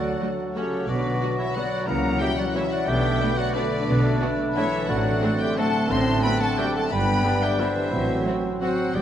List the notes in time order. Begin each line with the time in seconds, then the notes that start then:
Already playing: D2 D3 F#3 A3 D4 F#4 A4 D5 F#5 A5
0.05 F#3
0.14 F#4
0.21 F#3 A3 F#4 A4
0.31 F#4
0.39 F#5
0.48 A5
0.54 C#3 F#3 A3 C#4 F#4 G4 A4 C#5 F#5
0.65 F#4
0.82 F#4
0.88 B1 B2 D3 F#3 D4 F#4 B4 D5
0.97 B3
1.05 F#3
1.21 F#3 B3 F#4 B4
1.31 F#4
1.38 E3 E4 C#5 E5 F#5
1.48 B5
1.54 F#3 B3 F#4 D5 F#5
1.64 F#4
1.73 B4
1.81 F#4
1.86 C#2 C#3 E3 F#3 A#3 E4 A#4 F#5 A#5
1.97 C#4
2.04 F#3
2.13 E4
2.19 F#3 G3 A#3 E4 F#4 G4 A#4 E5 G5
2.30 F#4
2.38 F#3 F#4 D5 E5 F#5
2.47 A#5
2.55 E3 F#3 A#3 E4 F#4 C#5 E5
2.64 F#4
2.71 F#3 F#4 A#4 D5 F#5
2.80 E4
2.87 B1 B2 D3 G3 A3 D4 G4 E5 G5
2.96 F#3
3.05 A3
3.13 D4
3.20 A3 B3 D4 F#4 B4
3.30 A4
3.38 F#3 F#4 D5 F#5
3.47 B5
3.54 D3 A3 B3 D4 F#4 B4 D5
3.64 A4
3.72 B4
3.80 D4
3.88 B1 B2
3.96 F#3
4.05 A3
4.13 D4
4.21 A3 B3 D4 F#4 B4
4.31 A4
4.40 D5
4.49 B5
4.56 E3 A3 B3 D4 E4 F#4 C#5 D5 E5
4.65 A4
4.73 B4
4.81 D4
4.88 A1 A2 D3 F#3 A3 C4 D4 F#4 D5 F#5
5.06 A3
5.14 D4
5.21 A3 C4 D4 F#4 C5
5.32 A4
5.40 G3 G4 D5 E5 G5
5.49 C6
5.57 A3 C4 D4 F#4 A4 F#5 A5
5.66 A4
5.75 C5
5.83 D4
5.89 A1 A2 A3 C4 D4 C5 A5 C6
5.99 F#3
6.07 A3
6.16 D4
6.23 A3 B3 C4 D4 F#4 B4 G5 B5
6.33 A4
6.40 A3 A4 D5 F#5 A5
6.51 C6
6.57 G3 A3 C4 D4 F#4 G4 D5 E5 G5
6.68 A4
6.75 A3 A4 C5 F#5 A5
6.84 D4
6.90 G1 G2 D3 G3 B3 D4 B4 G5 B5
7.00 D3
7.08 B3
7.25 D3 B3 D4 G4 B4
7.34 D4
7.42 G3 G4 D5 E5 G5
7.52 B5
7.60 D3 E3 B3 D4 E4 G4 C5 D5 E5
7.69 B4
7.77 D4
7.85 B3
7.92 A1 A2 F#3 C4
8.01 A3
8.09 F#3
8.18 C4
8.26 F#3 C4 F#4 C5
8.35 F#4
8.44 C5
8.53 C6
8.60 F#3 C4 F#4 C5 F#5
8.70 F#4
8.79 C5
8.87 C4
8.94 G1 G2 D3 G3 B3 G4 D5 G5